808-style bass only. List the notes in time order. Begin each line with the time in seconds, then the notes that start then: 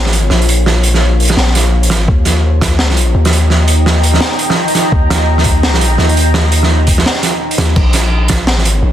0.00 A1
0.30 A#1
1.37 A#1
1.86 A1
2.08 D#2
3.15 D#2
4.92 D#2
5.98 D#2
7.58 D#2
7.76 A#1
8.50 A1
8.83 A#1